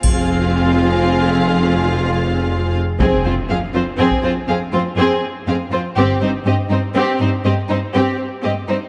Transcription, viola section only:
X:1
M:12/8
L:1/8
Q:3/8=81
K:Fm
V:1 name="Viola section"
[CF]8- [CF]3 z | C C C C C C C C C z C C | C C C C C C C C C z C C |]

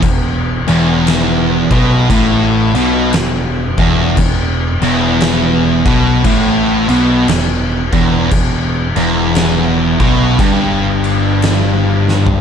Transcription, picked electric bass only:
X:1
M:4/4
L:1/8
Q:"Swing" 1/4=58
K:Em
V:1 name="Picked electric bass" clef=bass
E,,, E,,,2 B,,, A,,, B,,, E,,, E,,, | E,,, E,,,2 B,,, A,,, B,,, E,,, E,,, | E,,, E,,,2 B,,, G,,,4 |]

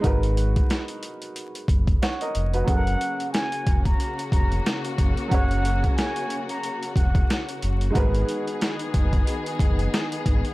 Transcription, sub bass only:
X:1
M:4/4
L:1/16
Q:"Swing 16ths" 1/4=91
K:G#m
V:1 name="Sub bass" clef=bass
G,,,4 z6 F,,,2 z2 ^E,,,2 | F,,,2 z4 ^E,,,2 z2 E,,,2 z2 F,,, z | F,,,4 z6 ^E,,,2 z2 F,,,2 | G,,,2 z4 F,,,2 z2 F,,,2 z2 G,,, z |]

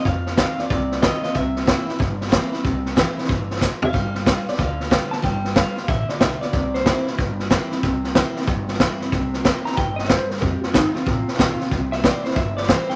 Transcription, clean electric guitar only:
X:1
M:4/4
L:1/8
Q:"Swing" 1/4=185
K:Cmix
V:1 name="Clean electric guitar"
f2 f d3 _e e | e4 z4 | z6 z f- | f3 d f3 a |
g2 f2 e d e d- | d c2 z4 z | z8 | z3 b g _e c B |
G F _E F4 z | z e d c e d c g |]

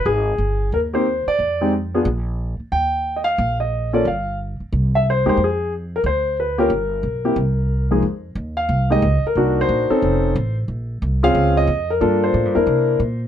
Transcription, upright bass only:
X:1
M:4/4
L:1/8
Q:"Swing" 1/4=181
K:Fm
V:1 name="Upright bass" clef=bass
A,,,2 G,,,2 E,,3 z | F,,4 B,,,3 z | E,,4 B,,,4 | G,,,3 z C,,3 =E,, |
F,,4 =D,,4 | G,,,2 =B,,,2 C,,4 | F,,2 E,,2 C,,2 D,, z | C,,2 B,,, z F,,,2 =A,,,2 |
B,,,2 C,,2 D,,2 F,,2 | G,,2 (3=A,, G,, F,, C,2 B,,2 |]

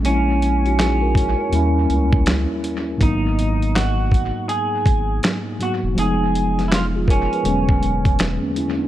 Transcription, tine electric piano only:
X:1
M:4/4
L:1/16
Q:"Swing 16ths" 1/4=81
K:G#m
V:1 name="Tine electric piano"
z3 [DF] [EG] [FA]2 [Ac]2 z6 z | z16 | z4 z [=F_A] ^A [_A_c]2 z4 [^A,^C] [CE] [B,=D] |]
V:2 name="Tine electric piano"
[G,A,CE]8 [D,,=G,A,CE]8 | [G,,F,A,B,D]12- [G,,F,A,B,D]2 [G,,F,A,B,F]2 | [=F,_A,_C_E]8 [=E,,=D,^F,G,B,^C]8 |]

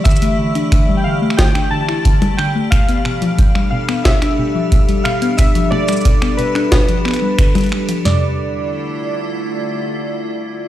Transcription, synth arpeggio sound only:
X:1
M:4/4
L:1/16
Q:1/4=90
K:Ddor
V:1 name="Synth arpeggio sound" clef=bass
D, A, D, D D, G, D, A, D, D D, E D, G, D, A, | B,, B, B,, F, B,, G, B,, B, B,, D B,, F, B,, G, B,, B, | B,, F, B,, G, B,, B, B,, D B,, F, B, G, D, G, G, F, | C,2 z12 z2 |]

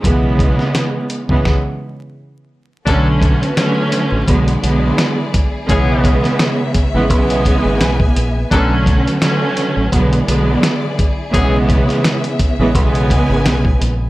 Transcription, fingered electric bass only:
X:1
M:4/4
L:1/16
Q:"Swing 16ths" 1/4=85
K:Bdor
V:1 name="Fingered electric bass" clef=bass
B,,,4 z3 A,,, z8 | B,,,4 z3 A,,, B,,,2 B,,,2 z4 | B,,,4 z3 A,,, B,,,3 G,,, B,,,2 ^A,,,2 | B,,,4 z3 A,,, B,,,2 B,,,2 z4 |
B,,,4 z3 A,,, B,,,3 G,,, B,,,2 ^A,,,2 |]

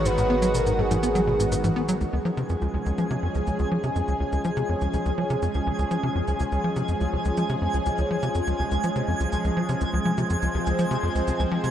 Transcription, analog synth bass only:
X:1
M:4/4
L:1/16
Q:1/4=123
K:G#m
V:1 name="Analog synth bass" clef=bass
G,, G,, B, F, B,, G,, G,, G,, B, F, B,, G,, G,, G,, B, F, | [K:Db] D,, D,, F, C, F,, D,, D,, D,, F, C, F,, D,, D,, D,, F, C, | F,, D,, D,, D,, F, C, F,, D,, D,, D,, F, C, F,, D,, D,, D,, | F, C, F,, D,, D,, D,, F, C, F,, D,, D,, D,, F, C, F,, D,, |
D,, D,, F, C, F,, D,, D,, D,, F, C, F,, D,, D,, D,, F, C, | D,, D,, F, C, F,, D,, D,, D,, F, C, F,, D,, D,, D,, F, C, |]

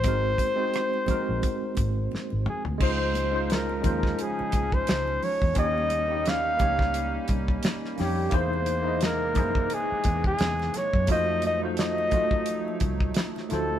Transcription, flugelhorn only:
X:1
M:4/4
L:1/16
Q:"Swing 16ths" 1/4=87
K:Db
V:1 name="Flugelhorn"
c12- c2 A2 | c4 B4 A3 c3 d2 | e4 f6 z4 =G2 | c4 B4 ^G3 G3 d2 |
e2 e2 e6 z4 =A2 |]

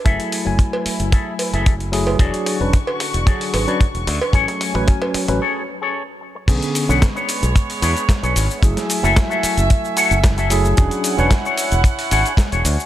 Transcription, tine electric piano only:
X:1
M:4/4
L:1/16
Q:1/4=112
K:Bdor
V:1 name="Tine electric piano"
[F,A,Eg]3 [F,A,Eg]8- [F,A,Eg]3 [F,A,EG]2 | [F,DG]3 [F,CDB] z4 [F,DG]3 [F,CDB] z4 | [F,Cg]3 [F,CB] [F,Cg]3 [F,CB] z8 | [D,B,CG]3 [D,B,CB] z12 |
[F,A,EG]3 [F,A,Eg]8- [F,A,Eg]3 [F,A,EG]2 | [F,CDG]3 [F,CDB] z12 |]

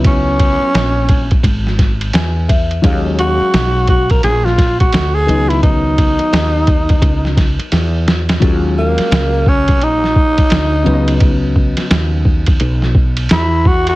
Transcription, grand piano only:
X:1
M:4/4
L:1/8
Q:"Swing 16ths" 1/4=86
K:Dbdor
V:1 name="Grand piano"
z6 a f | z8 | z8 | z8 |
z8 |]
V:2 name="Grand piano"
[G,CEF]6- [G,CEF] z | [G,A,D=f]6- [G,A,Df] [E,G,CE]- | [E,G,CE]6- [E,G,CE] z | [G,A,D=F]6- [G,A,DF] [D,G,CDe]- |
[D,G,CDe]6- [D,G,CDe] z |]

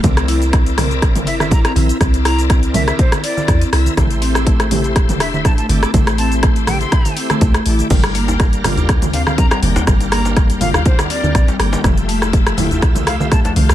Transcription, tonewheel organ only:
X:1
M:4/4
L:1/8
Q:"Swing 16ths" 1/4=122
K:Gdor
V:1 name="Tonewheel organ"
[CEBd]6- [CEBd] [CEBe] | [CEBd]6- [CEBd] [CEBe] | [A,EGc]6- [A,EGc] [A,EGd] | [A,EGc]6- [A,EGc] [A,EGd] |
[DGBf]6- [DGBf] [DGBg] | [DGBf]6- [DGBf] [DGBg] | [A,FGe]6- [A,FGe] [A,FGf] |]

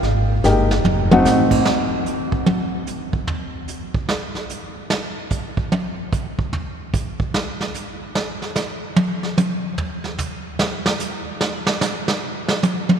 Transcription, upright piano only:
X:1
M:4/4
L:1/8
Q:"Swing" 1/4=148
K:Cphr
V:1 name="Upright piano"
z2 [A,B,EG] z2 [=A,CE_G]3 | [K:Bbm] z8 | z8 | z8 |
z8 | z8 | z8 | z8 |]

